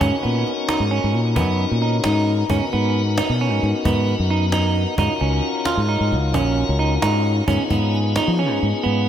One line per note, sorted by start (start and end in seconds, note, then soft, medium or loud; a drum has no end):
0.01 0.10 G#2 medium
0.01 2.45 C#4 medium
0.01 0.15 C#4 medium
0.01 2.46 D#4 medium
0.01 2.46 F#4 medium
0.01 2.46 A#4 medium
0.01 cajon bass medium
0.23 0.43 A#2 medium
0.23 0.52 B3 medium
0.23 cajon slap soft
0.46 cajon slap soft
0.69 0.83 D#4 medium
0.69 cajon slap medium
0.80 0.99 G#2 medium
0.91 1.20 C#4 medium
0.91 cajon slap soft
1.04 1.15 G#2 medium
1.14 1.38 A#2 medium
1.14 cajon slap soft
1.36 1.64 F#2 medium
1.36 1.65 B3 medium
1.36 cajon bass medium
1.59 cajon slap soft
1.71 1.99 A#2 medium
1.81 1.96 D#4 medium
1.81 cajon slap soft
2.04 2.42 G#2 medium
2.04 2.33 D#4 medium
2.04 cajon slap loud
2.27 cajon slap soft
2.50 2.59 G#2 medium
2.50 4.95 B3 medium
2.50 2.64 C#4 medium
2.50 4.95 D#4 medium
2.50 4.95 F#4 medium
2.50 4.95 A#4 medium
2.50 cajon bass medium
2.72 3.20 G#2 medium
2.72 3.01 B3 medium
2.72 cajon slap soft
2.95 cajon slap soft
3.18 3.32 D#4 medium
3.18 cajon slap medium
3.30 3.52 B2 medium
3.40 3.70 C#4 medium
3.40 cajon slap soft
3.52 3.61 G#2 medium
3.63 3.72 G#2 medium
3.63 cajon slap soft
3.85 4.13 G#2 medium
3.85 4.15 B3 medium
3.85 cajon bass loud
4.08 cajon slap soft
4.20 4.85 F#2 medium
4.30 4.45 D#4 medium
4.30 cajon slap soft
4.52 4.82 D#4 medium
4.52 cajon slap medium
4.76 cajon slap soft
4.98 5.08 G#2 medium
4.98 7.44 C#4 medium
4.98 5.13 D#4 medium
4.98 7.44 F4 medium
4.98 7.44 F#4 medium
4.98 7.44 A#4 medium
4.98 cajon bass medium
5.20 5.40 C#2 medium
5.20 5.50 C#4 medium
5.20 cajon slap soft
5.43 cajon slap soft
5.65 5.81 F4 medium
5.65 cajon slap medium
5.77 5.96 G#2 medium
5.89 6.18 D#4 medium
5.89 cajon slap soft
6.01 6.13 G#2 medium
6.12 6.34 C#2 medium
6.12 cajon slap soft
6.34 6.62 A#1 medium
6.34 6.63 C#4 medium
6.34 cajon bass loud
6.58 cajon slap soft
6.69 6.97 C#2 medium
6.79 6.94 D#4 medium
6.79 cajon slap soft
7.02 7.40 G#2 medium
7.02 7.31 D#4 medium
7.02 cajon slap loud
7.25 cajon slap soft
7.48 7.57 G#2 medium
7.48 9.09 B3 medium
7.48 7.62 C#4 medium
7.48 9.09 D#4 medium
7.48 9.09 F4 medium
7.48 9.09 G#4 medium
7.48 cajon bass medium
7.70 8.17 G#2 medium
7.70 8.00 B3 medium
7.70 cajon bass medium
7.70 cajon slap soft
7.94 cajon slap soft
8.16 8.31 D#4 medium
8.16 cajon slap medium
8.28 8.51 F3 medium
8.38 8.68 C#4 medium
8.38 cajon slap soft
8.51 8.60 G#2 medium
8.61 8.72 G#2 medium
8.61 cajon slap soft
8.83 9.09 G#2 medium
8.83 9.09 B3 medium
8.83 cajon slap soft